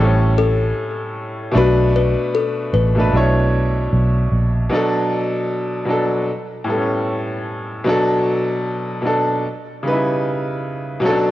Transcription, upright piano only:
Already playing: A2 G3
0.00 A4
0.04 C#4
1.51 B2 A3 D4
1.56 B4
2.95 B2 A3 D4
2.99 B4
3.12 B2 A3 D4 E4
3.17 C#5
4.70 B2 F#3 D4
4.75 A4
5.85 B2 F#3 D4
5.91 A4
6.64 A2 G3
6.69 B3 A4
6.75 C#4
7.84 B2 F#3 D4
7.89 A4
9.02 B2 F#3 D4
9.07 A4
9.83 C#3 G3 D#4
9.88 B4
9.93 E4
11.00 B2 F#3 C#4
11.06 A4
11.10 D4

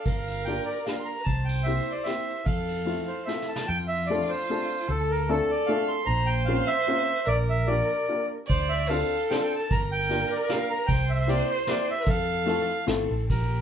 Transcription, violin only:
0.05 A#4
1.20 B4
1.25 C5
2.46 A4
3.27 A4
3.68 F4
4.88 A4
5.28 A4
6.06 C5
7.26 A#4
8.46 D5
8.89 A4
9.69 A#4
10.87 C5
12.07 A4
12.87 A4
13.29 G4

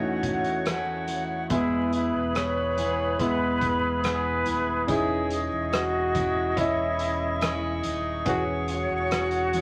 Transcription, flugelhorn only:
Already playing: F#4
1.51 E4
1.94 E4
2.36 C#5
3.20 B4
4.04 B4
4.88 G#4
5.73 F#4
6.58 E4
8.28 F#4
8.70 F#4

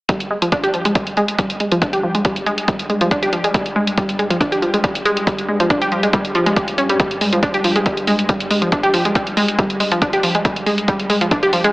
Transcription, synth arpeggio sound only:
0.09 G3
0.31 G#3
0.42 F3
0.52 D4
0.63 G4
0.74 F3
0.85 G#3
0.95 G3
1.17 G#3
1.39 G3
1.60 G#3
1.72 F3
1.82 D4
1.93 G4
2.03 F3
2.15 G#3
2.25 G3
2.46 G#3
2.68 G3
2.90 G#3
3.01 F3
3.11 D4
3.23 G4
3.33 F3
3.44 G#3
3.54 G3
3.76 G#3
3.97 G3
4.19 G#3
4.30 F3
4.40 D4
4.52 G4
4.62 F3
4.74 G#3
4.84 G3
5.05 G#3
5.27 G3
5.49 G#3
5.60 F3
5.70 D4
5.82 G4
5.92 F3
6.03 G#3
6.13 G3
6.35 F3
6.46 G#3
6.56 G4
6.78 C#4
6.90 G3
7.00 G3
7.21 G#3
7.33 F3
7.43 D4
7.54 G4
7.64 F3
7.76 G#3
7.86 G3
8.07 G#3
8.29 G3
8.51 G#3
8.62 F3
8.72 D4
8.83 G4
8.94 F3
9.05 G#3
9.15 G3
9.37 G#3
9.59 G3
9.80 G#3
9.92 F3
10.02 D4
10.13 G4
10.23 F3
10.35 G#3
10.45 G3
10.66 G#3
10.88 G3
11.10 G#3
11.21 F3
11.31 D4
11.43 G4
11.53 F3
11.64 G#3

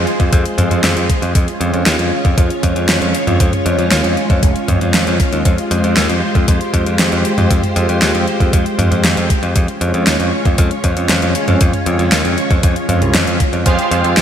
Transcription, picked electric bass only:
0.20 F2
0.33 F2
0.58 F2
0.71 F2
0.84 F2
0.96 F2
1.22 F2
1.35 F2
1.61 F2
1.73 F2
1.86 D#2
1.99 F2
2.25 F2
2.38 F2
2.63 F2
2.76 F2
2.89 F2
3.02 F2
3.27 F2
3.40 F2
3.66 F2
3.78 F2
3.91 D#2
4.04 F2
4.30 F2
4.43 F1
4.68 F2
4.81 F2
4.94 F2
5.07 F2
5.33 D#2
5.45 F2
5.71 F2
5.84 F2
5.97 D#2
6.10 F2
6.35 F2
6.48 F2
6.74 F2
6.86 F2
6.99 F2
7.12 F2
7.38 F2
7.50 F2
7.76 F2
7.89 F2
8.02 D#2
8.15 F2
8.40 F2
8.53 F2
8.79 F2
8.91 F2
9.04 F2
9.17 F2
9.43 F2
9.56 F2
9.81 F2
9.94 F2
10.07 D#2
10.19 F2
10.45 F2
10.58 F2
10.84 F2
10.97 F2
11.10 F2
11.22 F2
11.48 F2
11.61 F2
11.86 F2
11.99 F2
12.12 D#2
12.25 F2
12.51 F2
12.63 F2
12.89 F2
13.01 C2
13.14 F2
13.27 F2
13.53 F2
13.66 F2
13.91 F2
14.04 F2
14.17 D#2

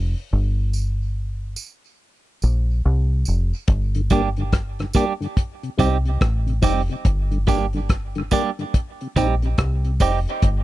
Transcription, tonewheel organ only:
3.96 G2 D3
4.11 G3 A#3 D4
4.38 G2 D3
4.80 G2 D3
4.95 G3 A#3 D4
5.21 G2 D3
5.63 C3
5.78 G3 C4 D#4
6.05 C3
6.47 C3
6.62 G3 C4 D#4
6.90 C3
7.31 G2 D3
7.47 G3 A#3 D4
7.74 G2 D3
8.16 G2 D3
8.31 G3 A#3 D4
8.59 G2 D3
9.01 C3
9.16 G3 C4 D#4
9.42 C3
9.85 C3
10.00 G3 C4 D#4
10.27 C3

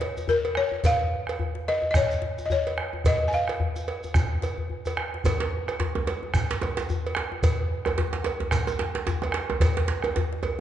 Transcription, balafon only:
Already playing: C#5
0.29 A#4
0.57 C#5
0.86 F5
1.68 D#5
1.91 D#5
1.97 C#5
2.46 D#5
2.52 C#5
3.07 D#5
3.28 G#5
3.34 F5

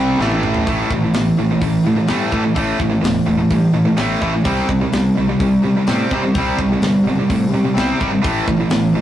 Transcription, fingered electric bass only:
Already playing: C2
0.19 A1
0.67 A1
0.90 A1
1.14 A1
1.39 A1
1.61 A1
1.86 A2
2.10 G2
2.33 A2
2.56 A1
2.80 A1
3.02 E1
3.26 E1
3.51 G2
3.74 A2
3.99 A1
4.22 A1
4.45 C2
4.69 C2
4.94 C2
5.18 C2
5.40 C2
5.65 C3
5.88 A2
6.12 C3
6.35 C2
6.59 C2
6.82 G1
7.05 G1
7.30 A2
7.52 C3
7.76 C2
8.01 G#1
8.25 A1
8.48 A1
8.73 A1
8.94 A1

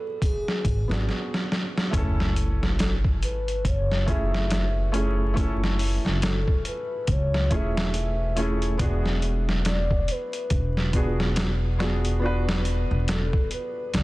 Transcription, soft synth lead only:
Already playing: A4
0.24 G#4
2.81 A4
3.23 B4
3.67 C#5
4.10 E5
6.25 A4
6.68 B4
7.11 C#5
7.54 E5
9.68 D5
10.11 B4
13.12 A4
13.54 B4
13.97 D5

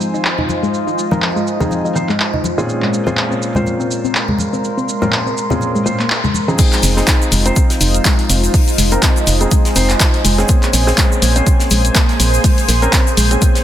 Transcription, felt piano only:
Already playing: F3 C4 D#4 C5
1.11 F3 C4 D#4 A#4
1.60 F3 C4 D#4 G#4
1.95 F3 C4 D#4 C5
2.58 A#2 C4 C#4 F4 G#4
3.07 A#2 C4 C#4 F4 G#4
3.55 A#2 C4 C#4 F4 C5
5.02 A#2 C4 C#4 F4 A#4
5.50 A#2 C4 C#4 F4 G#4
5.86 A#2 C4 C#4 F4 C5
6.48 F3 C4 D#4 G#4
6.59 C4 D#4 G#4
6.97 C4 D#4 G#4
7.46 C4 D#4 C5
8.92 C4 D#4 A#4
9.41 C4 D#4 G#4
9.76 C4 D#4 C5
10.38 C4 C#4 G#4
10.87 C4 C#4 G#4
11.36 C4 C#4 C5
12.82 C4 C#4 A#4
13.31 C4 C#4 G#4

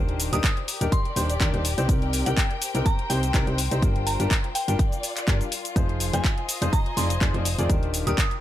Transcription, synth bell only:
0.33 D#6
0.92 C6
2.26 G5
2.86 A#5
3.10 G5
4.07 A#5
4.55 G5
4.68 G5
6.13 G#5
6.73 A#5
6.97 C6
8.07 D#6

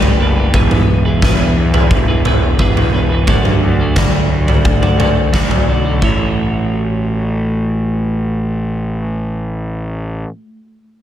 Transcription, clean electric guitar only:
Already playing: G3 A3 D4 G4 B4
0.20 A3 D4 G4 B4
0.36 D4 G4 B4
0.54 E3 B3 E4 G#4 B4
1.05 E4 G#4 B4
1.22 E3 B3 E4 G#4 B4
1.57 muted clean electric guitar stroke
1.74 E4 G#4 B4
2.08 E4 G#4 B4
2.25 B3 E4 G#4 B4
2.44 muted clean electric guitar stroke
2.59 E3 B3 E4 G#4 B4
2.93 B3 E4 G#4 B4
3.11 E4 G#4 B4
3.28 D3 F#3 A3 D4 F#4 D5
3.79 A3 D4 F#4 D5
3.96 D3 F#3 A3 D4 F#4 D5
4.31 muted clean electric guitar stroke
4.48 A3 D4 F#4 D5
4.82 A3 D4 F#4 D5
5.00 A3 D4 F#4 D5
5.17 muted clean electric guitar stroke
5.33 D3 F#3 A3 D4 F#4 D5
5.68 A3 D4 F#4 D5
5.84 A3 D4 F#4 D5
6.01 A3 E4 F#4 C#5

